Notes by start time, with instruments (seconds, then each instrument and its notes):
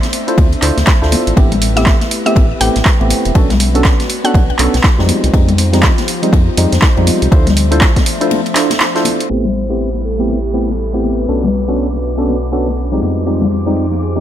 Already playing: analog synth pad A3 C4 D4 C5 E5
0.03 snare, closed hi-hat, high conga
0.13 open hi-hat, ride
0.28 synth stab D4 E4 F4 A4 C5, closed hi-hat
0.38 analog synth bass D2, kick, ride, high conga
0.52 closed hi-hat, ride
0.62 analog synth bass D2, synth stab D4 E4 F4 A4 C5, clap, open hi-hat, ride
0.77 analog synth bass D2, snare, closed hi-hat, high conga
0.87 kick, snare, clap, ride
1.02 analog synth bass D2, synth stab D4 E4 F4 A4 C5, snare
1.12 open hi-hat, ride, high conga
1.27 analog synth bass A1, closed hi-hat, ride
1.36 analog synth bass A1, synth stab A3 B3 C4 E4 G4, analog synth pad E4 G4 B4, kick, ride
1.52 closed hi-hat, high conga, low conga
1.62 open hi-hat, ride
1.76 synth stab A3 B3 C4 E4 G4, synth pluck E5, snare, closed hi-hat
1.86 kick, snare, clap, ride
2.00 snare, closed hi-hat, high conga
2.11 open hi-hat, ride
2.26 synth stab A3 B3 C4 E4 G4, synth pluck E5, closed hi-hat
2.35 analog synth bass A1, kick, ride, high conga
2.60 analog synth bass A1, synth stab A3 B3 C4 E4 G4, synth pluck G5, open hi-hat, ride
2.75 analog synth bass A1, snare, closed hi-hat, high conga
2.85 kick, snare, clap, ride
3.00 analog synth bass A1, synth stab A3 B3 C4 E4 G4, ride
3.10 open hi-hat, ride, high conga
3.25 analog synth bass E1, closed hi-hat, ride
3.35 analog synth bass B1, synth stab B3 C#4 D4 F#4 A4, analog synth pad C#4 D4 F#4 B4, kick, ride
3.50 snare, closed hi-hat, high conga, low conga
3.60 open hi-hat, ride
3.75 synth stab B3 C#4 D4 F#4 A4, closed hi-hat
3.84 kick, snare, clap, ride
4.00 snare, closed hi-hat, high conga
4.10 open hi-hat, ride
4.24 synth stab B3 C#4 D4 F#4 A4, synth pluck F#5, closed hi-hat
4.34 analog synth bass B1, kick, ride, high conga
4.50 ride
4.59 analog synth bass B1, synth stab B3 C#4 D4 F#4 A4, clap, open hi-hat, ride
4.73 analog synth bass B1, snare, closed hi-hat, high conga
4.84 kick, snare, clap, ride
4.99 analog synth bass F2, synth stab F3 G3 G#3 C4 D#4, snare
5.09 analog synth pad F3 D#4 F4 G4 C5, open hi-hat, ride, high conga
5.24 analog synth bass C2, closed hi-hat, ride
5.33 analog synth bass F2, synth stab F3 G3 G#3 C4 D#4, kick, ride
5.48 closed hi-hat, high conga, low conga
5.58 open hi-hat, ride
5.73 synth stab F3 G3 G#3 C4 D#4, snare, closed hi-hat
5.83 kick, snare, clap, ride
5.97 snare, closed hi-hat, high conga
6.08 open hi-hat, ride
6.22 synth stab F3 G3 G#3 C4 D#4, closed hi-hat
6.33 analog synth bass F2, kick, ride, high conga
6.57 analog synth bass F2, synth stab F3 G3 G#3 C4 D#4, open hi-hat, ride
6.72 analog synth bass F2, snare, closed hi-hat, high conga
6.82 kick, snare, clap, ride
6.97 analog synth bass F2, synth stab F3 G3 G#3 C4 D#4, ride
7.07 open hi-hat, ride, high conga
7.22 analog synth bass C2, closed hi-hat, ride
7.31 analog synth bass D2, analog synth pad F3 A3 D4 E5, synth stab D4 E4 F4 A4 C5, kick, ride
7.47 snare, closed hi-hat, high conga, low conga
7.57 open hi-hat, ride
7.71 synth stab D4 E4 F4 A4 C5, closed hi-hat
7.81 kick, snare, clap, ride
7.96 kick, snare, closed hi-hat, high conga
8.06 open hi-hat, ride
8.21 synth stab D4 E4 F4 A4 C5, closed hi-hat
8.31 ride, high conga
8.46 closed hi-hat, ride
8.55 synth stab D4 E4 F4 A4 C5, snare, clap, open hi-hat, ride
8.70 snare, closed hi-hat, ride, high conga
8.80 snare, clap, ride
8.95 synth stab D4 E4 F4 A4 C5, snare, closed hi-hat
9.05 open hi-hat, ride, high conga
9.20 closed hi-hat, ride
9.30 analog synth bass A1, analog synth pad G3 A3 E4 G4 B5, synth stab A3 B3 C4 E4 G4, soft synth lead C5, string machine D6, crash, ride, downlifter
9.45 high conga, low conga
9.55 ride, shaker
9.69 synth stab A3 B3 C4 E4 G4, snare
9.80 ride
9.94 snare, high conga
10.05 soft synth lead A4, ride, shaker
10.19 synth stab A3 B3 C4 E4 G4
10.29 soft synth lead G4, ride, high conga, shaker
10.54 synth stab A3 B3 C4 E4 G4, soft synth lead A4, ride, shaker
10.69 snare, high conga, shaker
10.79 ride, shaker
10.94 synth stab A3 B3 C4 E4 G4, ride
11.04 soft synth lead B4, ride, high conga, shaker
11.19 ride, shaker
11.28 analog synth bass B1, synth stab B3 C#4 D4 F#4 A4, analog synth pad C#4 D4 F#4 B4, ride, shaker
11.43 snare, high conga, low conga
11.53 ride, shaker
11.68 synth stab B3 C#4 D4 F#4 A4, shaker
11.78 ride, shaker
11.93 snare, high conga
12.03 ride, shaker
12.17 synth stab B3 C#4 D4 F#4 A4, shaker
12.27 ride, high conga, shaker
12.42 ride
12.52 synth stab B3 C#4 D4 F#4 A4, ride, shaker
12.68 snare, high conga, shaker
12.77 ride, shaker
12.92 synth stab F3 G3 G#3 C4 D#4, snare
13.02 analog synth bass F2, analog synth pad F3 D#4 F4 G4 C5, ride, high conga, shaker
13.18 ride, shaker
13.26 synth stab F3 G3 G#3 C4 D#4, ride, shaker
13.42 high conga, low conga
13.52 ride, shaker
13.66 synth stab F3 G3 G#3 C4 D#4, snare, shaker
13.76 ride, shaker
13.91 snare, high conga
14.02 soft synth lead G#4, ride, shaker
14.16 synth stab F3 G3 G#3 C4 D#4, shaker